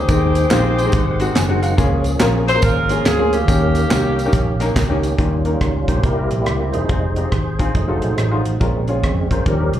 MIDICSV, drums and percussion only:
0, 0, Header, 1, 2, 480
1, 0, Start_track
1, 0, Tempo, 426136
1, 98, Time_signature, 4, 2, 24, 8
1, 11038, End_track
2, 0, Start_track
2, 0, Title_t, "Drums"
2, 96, Note_on_c, 9, 54, 79
2, 98, Note_on_c, 9, 36, 97
2, 98, Note_on_c, 9, 42, 72
2, 208, Note_off_c, 9, 54, 0
2, 211, Note_off_c, 9, 36, 0
2, 211, Note_off_c, 9, 42, 0
2, 397, Note_on_c, 9, 42, 67
2, 404, Note_on_c, 9, 54, 53
2, 510, Note_off_c, 9, 42, 0
2, 517, Note_off_c, 9, 54, 0
2, 568, Note_on_c, 9, 39, 89
2, 568, Note_on_c, 9, 54, 95
2, 575, Note_on_c, 9, 38, 114
2, 575, Note_on_c, 9, 42, 82
2, 681, Note_off_c, 9, 39, 0
2, 681, Note_off_c, 9, 54, 0
2, 688, Note_off_c, 9, 38, 0
2, 688, Note_off_c, 9, 42, 0
2, 885, Note_on_c, 9, 42, 72
2, 890, Note_on_c, 9, 54, 61
2, 997, Note_off_c, 9, 42, 0
2, 1003, Note_off_c, 9, 54, 0
2, 1036, Note_on_c, 9, 54, 80
2, 1048, Note_on_c, 9, 42, 87
2, 1049, Note_on_c, 9, 36, 117
2, 1148, Note_off_c, 9, 54, 0
2, 1161, Note_off_c, 9, 42, 0
2, 1162, Note_off_c, 9, 36, 0
2, 1349, Note_on_c, 9, 42, 74
2, 1364, Note_on_c, 9, 54, 54
2, 1461, Note_off_c, 9, 42, 0
2, 1477, Note_off_c, 9, 54, 0
2, 1525, Note_on_c, 9, 42, 100
2, 1529, Note_on_c, 9, 38, 101
2, 1535, Note_on_c, 9, 39, 83
2, 1535, Note_on_c, 9, 54, 81
2, 1637, Note_off_c, 9, 42, 0
2, 1641, Note_off_c, 9, 38, 0
2, 1648, Note_off_c, 9, 39, 0
2, 1648, Note_off_c, 9, 54, 0
2, 1833, Note_on_c, 9, 42, 81
2, 1841, Note_on_c, 9, 54, 57
2, 1945, Note_off_c, 9, 42, 0
2, 1954, Note_off_c, 9, 54, 0
2, 2008, Note_on_c, 9, 36, 100
2, 2008, Note_on_c, 9, 42, 76
2, 2009, Note_on_c, 9, 54, 77
2, 2121, Note_off_c, 9, 36, 0
2, 2121, Note_off_c, 9, 42, 0
2, 2122, Note_off_c, 9, 54, 0
2, 2301, Note_on_c, 9, 42, 66
2, 2318, Note_on_c, 9, 54, 55
2, 2413, Note_off_c, 9, 42, 0
2, 2430, Note_off_c, 9, 54, 0
2, 2477, Note_on_c, 9, 39, 86
2, 2477, Note_on_c, 9, 54, 94
2, 2478, Note_on_c, 9, 38, 107
2, 2478, Note_on_c, 9, 42, 83
2, 2590, Note_off_c, 9, 38, 0
2, 2590, Note_off_c, 9, 39, 0
2, 2590, Note_off_c, 9, 42, 0
2, 2590, Note_off_c, 9, 54, 0
2, 2790, Note_on_c, 9, 38, 40
2, 2797, Note_on_c, 9, 42, 71
2, 2799, Note_on_c, 9, 54, 56
2, 2902, Note_off_c, 9, 38, 0
2, 2910, Note_off_c, 9, 42, 0
2, 2912, Note_off_c, 9, 54, 0
2, 2951, Note_on_c, 9, 54, 81
2, 2956, Note_on_c, 9, 42, 98
2, 2960, Note_on_c, 9, 36, 118
2, 3063, Note_off_c, 9, 54, 0
2, 3068, Note_off_c, 9, 42, 0
2, 3073, Note_off_c, 9, 36, 0
2, 3259, Note_on_c, 9, 42, 80
2, 3274, Note_on_c, 9, 54, 56
2, 3372, Note_off_c, 9, 42, 0
2, 3387, Note_off_c, 9, 54, 0
2, 3442, Note_on_c, 9, 42, 97
2, 3444, Note_on_c, 9, 39, 78
2, 3444, Note_on_c, 9, 54, 75
2, 3446, Note_on_c, 9, 38, 111
2, 3554, Note_off_c, 9, 42, 0
2, 3557, Note_off_c, 9, 39, 0
2, 3557, Note_off_c, 9, 54, 0
2, 3558, Note_off_c, 9, 38, 0
2, 3749, Note_on_c, 9, 42, 79
2, 3756, Note_on_c, 9, 54, 54
2, 3862, Note_off_c, 9, 42, 0
2, 3868, Note_off_c, 9, 54, 0
2, 3922, Note_on_c, 9, 36, 98
2, 3923, Note_on_c, 9, 42, 75
2, 3927, Note_on_c, 9, 54, 84
2, 4035, Note_off_c, 9, 36, 0
2, 4036, Note_off_c, 9, 42, 0
2, 4040, Note_off_c, 9, 54, 0
2, 4223, Note_on_c, 9, 42, 68
2, 4235, Note_on_c, 9, 54, 55
2, 4336, Note_off_c, 9, 42, 0
2, 4347, Note_off_c, 9, 54, 0
2, 4401, Note_on_c, 9, 39, 92
2, 4401, Note_on_c, 9, 54, 85
2, 4405, Note_on_c, 9, 38, 109
2, 4405, Note_on_c, 9, 42, 81
2, 4513, Note_off_c, 9, 39, 0
2, 4513, Note_off_c, 9, 54, 0
2, 4518, Note_off_c, 9, 38, 0
2, 4518, Note_off_c, 9, 42, 0
2, 4718, Note_on_c, 9, 42, 69
2, 4723, Note_on_c, 9, 54, 56
2, 4831, Note_off_c, 9, 42, 0
2, 4836, Note_off_c, 9, 54, 0
2, 4872, Note_on_c, 9, 54, 76
2, 4878, Note_on_c, 9, 36, 116
2, 4884, Note_on_c, 9, 42, 97
2, 4985, Note_off_c, 9, 54, 0
2, 4991, Note_off_c, 9, 36, 0
2, 4997, Note_off_c, 9, 42, 0
2, 5183, Note_on_c, 9, 42, 75
2, 5185, Note_on_c, 9, 38, 33
2, 5199, Note_on_c, 9, 54, 54
2, 5295, Note_off_c, 9, 42, 0
2, 5298, Note_off_c, 9, 38, 0
2, 5312, Note_off_c, 9, 54, 0
2, 5361, Note_on_c, 9, 36, 99
2, 5361, Note_on_c, 9, 42, 92
2, 5365, Note_on_c, 9, 38, 106
2, 5368, Note_on_c, 9, 39, 77
2, 5368, Note_on_c, 9, 54, 83
2, 5474, Note_off_c, 9, 36, 0
2, 5474, Note_off_c, 9, 42, 0
2, 5477, Note_off_c, 9, 38, 0
2, 5481, Note_off_c, 9, 39, 0
2, 5481, Note_off_c, 9, 54, 0
2, 5671, Note_on_c, 9, 42, 76
2, 5675, Note_on_c, 9, 54, 60
2, 5783, Note_off_c, 9, 42, 0
2, 5788, Note_off_c, 9, 54, 0
2, 5839, Note_on_c, 9, 42, 65
2, 5841, Note_on_c, 9, 36, 89
2, 5952, Note_off_c, 9, 42, 0
2, 5953, Note_off_c, 9, 36, 0
2, 6139, Note_on_c, 9, 42, 55
2, 6252, Note_off_c, 9, 42, 0
2, 6319, Note_on_c, 9, 36, 77
2, 6322, Note_on_c, 9, 37, 89
2, 6322, Note_on_c, 9, 42, 72
2, 6432, Note_off_c, 9, 36, 0
2, 6435, Note_off_c, 9, 37, 0
2, 6435, Note_off_c, 9, 42, 0
2, 6624, Note_on_c, 9, 36, 78
2, 6632, Note_on_c, 9, 42, 63
2, 6737, Note_off_c, 9, 36, 0
2, 6744, Note_off_c, 9, 42, 0
2, 6798, Note_on_c, 9, 36, 102
2, 6798, Note_on_c, 9, 42, 78
2, 6910, Note_off_c, 9, 36, 0
2, 6910, Note_off_c, 9, 42, 0
2, 7105, Note_on_c, 9, 42, 66
2, 7107, Note_on_c, 9, 37, 28
2, 7218, Note_off_c, 9, 42, 0
2, 7220, Note_off_c, 9, 37, 0
2, 7279, Note_on_c, 9, 42, 82
2, 7283, Note_on_c, 9, 37, 92
2, 7392, Note_off_c, 9, 42, 0
2, 7396, Note_off_c, 9, 37, 0
2, 7587, Note_on_c, 9, 42, 60
2, 7699, Note_off_c, 9, 42, 0
2, 7762, Note_on_c, 9, 42, 67
2, 7766, Note_on_c, 9, 36, 88
2, 7875, Note_off_c, 9, 42, 0
2, 7878, Note_off_c, 9, 36, 0
2, 8068, Note_on_c, 9, 42, 55
2, 8181, Note_off_c, 9, 42, 0
2, 8246, Note_on_c, 9, 36, 82
2, 8248, Note_on_c, 9, 37, 94
2, 8248, Note_on_c, 9, 42, 73
2, 8359, Note_off_c, 9, 36, 0
2, 8360, Note_off_c, 9, 37, 0
2, 8361, Note_off_c, 9, 42, 0
2, 8555, Note_on_c, 9, 36, 81
2, 8561, Note_on_c, 9, 42, 61
2, 8667, Note_off_c, 9, 36, 0
2, 8674, Note_off_c, 9, 42, 0
2, 8728, Note_on_c, 9, 36, 98
2, 8728, Note_on_c, 9, 42, 78
2, 8841, Note_off_c, 9, 36, 0
2, 8841, Note_off_c, 9, 42, 0
2, 9033, Note_on_c, 9, 42, 65
2, 9035, Note_on_c, 9, 37, 31
2, 9146, Note_off_c, 9, 42, 0
2, 9148, Note_off_c, 9, 37, 0
2, 9212, Note_on_c, 9, 42, 88
2, 9216, Note_on_c, 9, 37, 93
2, 9325, Note_off_c, 9, 42, 0
2, 9329, Note_off_c, 9, 37, 0
2, 9523, Note_on_c, 9, 42, 67
2, 9636, Note_off_c, 9, 42, 0
2, 9697, Note_on_c, 9, 36, 88
2, 9697, Note_on_c, 9, 42, 67
2, 9809, Note_off_c, 9, 42, 0
2, 9810, Note_off_c, 9, 36, 0
2, 9998, Note_on_c, 9, 42, 56
2, 10111, Note_off_c, 9, 42, 0
2, 10177, Note_on_c, 9, 36, 80
2, 10182, Note_on_c, 9, 37, 92
2, 10182, Note_on_c, 9, 42, 73
2, 10290, Note_off_c, 9, 36, 0
2, 10295, Note_off_c, 9, 37, 0
2, 10295, Note_off_c, 9, 42, 0
2, 10483, Note_on_c, 9, 37, 33
2, 10485, Note_on_c, 9, 36, 83
2, 10491, Note_on_c, 9, 42, 61
2, 10596, Note_off_c, 9, 37, 0
2, 10597, Note_off_c, 9, 36, 0
2, 10603, Note_off_c, 9, 42, 0
2, 10656, Note_on_c, 9, 42, 81
2, 10657, Note_on_c, 9, 36, 104
2, 10768, Note_off_c, 9, 42, 0
2, 10770, Note_off_c, 9, 36, 0
2, 10965, Note_on_c, 9, 42, 61
2, 11038, Note_off_c, 9, 42, 0
2, 11038, End_track
0, 0, End_of_file